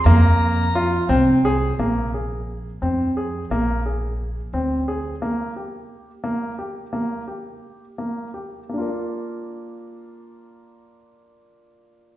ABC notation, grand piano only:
X:1
M:5/8
L:1/8
Q:1/4=87
K:Bbmix
V:1 name="Grand piano"
B,2 F C A | B, A2 C A | B, A2 C A | B, G2 B, G |
B, G2 B, G | [B,DFB]4- [B,DFB]- | [B,DFB]4- [B,DFB] |]